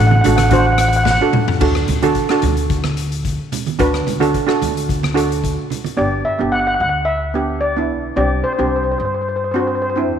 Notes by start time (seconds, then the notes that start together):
Already playing: A1
0.07 F#5
0.11 high conga
0.15 F#5
0.21 D4 F#5, closed hi-hat, low conga
0.25 A1 F#4 A4 F#5
0.36 F#5, cross-stick, closed hi-hat, high conga
0.43 F#5
0.50 D4 F#4 C5 F#5, kick, closed hi-hat, high conga
0.58 F#5
0.66 F#5
0.73 F#5
0.78 F#5, cross-stick, closed hi-hat
0.89 F#5
0.93 F#5, closed hi-hat
1.04 F#5, kick, snare, low conga
1.11 F#5
1.21 D4 F#4 A4
1.33 mid tom, low conga
1.48 floor tom
1.61 D2 D4 F#4 A4, kick, crash
1.75 cross-stick
1.88 D2, closed hi-hat, low conga
2.02 D4 F#4 A4, closed hi-hat, high conga
2.15 kick, closed hi-hat
2.29 D4 F#4 A4, cross-stick
2.42 D2, closed hi-hat, high conga, low conga
2.57 closed hi-hat
2.70 kick, closed hi-hat
2.84 cross-stick, high conga
2.97 closed hi-hat
3.12 closed hi-hat
3.25 kick, closed hi-hat
3.52 closed hi-hat, low conga
3.66 closed hi-hat, high conga
3.79 D2 D4 F#4 B4, kick, closed hi-hat
3.94 cross-stick
4.07 D2, closed hi-hat, low conga
4.20 D4 F#4 A4, closed hi-hat, high conga
4.34 kick, closed hi-hat
4.46 D4 F#4 A4, cross-stick
4.62 D2, closed hi-hat, high conga, low conga
4.77 closed hi-hat
4.89 kick, closed hi-hat
5.03 cross-stick, high conga
5.14 D4 F#4 A4, closed hi-hat
5.32 closed hi-hat
5.44 kick, closed hi-hat
5.70 closed hi-hat, low conga
5.84 closed hi-hat, high conga
5.97 G1 B3 D4 G4 D5
6.25 E5
6.39 G1 B3 D4 G4
6.52 F#5
6.60 F#5
6.67 F#5
6.75 F#5
6.80 D2 F#5
6.89 F#5
7.05 E5
7.34 B3 D4 G4
7.61 D5
7.76 B3 D4 E4
7.90 B1
8.16 C2 C4 D4 G4 D5
8.44 C5
8.53 C5
8.58 C2 C4 D4 G4 C5
8.68 C5
8.76 C5
8.83 C5
8.92 C5
8.98 G2 C5
9.05 C5
9.14 C5
9.22 C5
9.29 C5
9.36 C5
9.44 C5
9.51 C4 D4 C5
9.56 F#4 C5
9.67 C5
9.75 C5
9.82 C5
9.90 C5
9.96 C4 D4 E4
10.10 E2